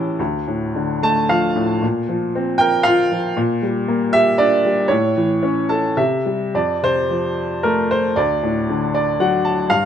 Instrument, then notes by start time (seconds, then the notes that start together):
upright piano
Already playing: A2 E3 C#4 E4 G4 A4
0.19 D2
0.47 A2
0.75 D3
1.03 A3 A5
1.29 F3 F5
1.56 A2
1.82 A#2
2.09 F3
2.35 C4
2.58 A#4 G5
2.83 F4 F5
3.11 F3
3.37 A#2
3.62 G3
3.88 A#3
4.13 G4 E5
4.38 D4 D5
4.65 G3
4.88 A2 C#5
5.17 E3
5.43 C#4
5.69 A4 A5
5.97 C3 E5
6.25 G3
6.54 F2 D5
6.83 C3 C5
7.10 F3
7.63 A3 A#4
7.91 C5
8.16 D2 D5
8.43 A2
8.69 D3
8.94 D5
9.20 F#3 F#5
9.45 A5
9.70 G2 F5